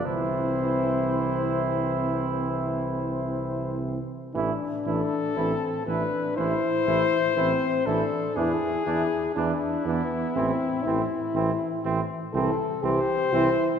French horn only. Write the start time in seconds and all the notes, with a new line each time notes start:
0.04 C4
4.35 D4
5.37 C4
5.87 D4
6.37 E4
7.36 C4
7.86 D4
8.36 E4
8.86 E4
9.35 D4
9.86 B3
10.35 C4
10.84 E4
12.34 A4
12.83 G4
13.33 E4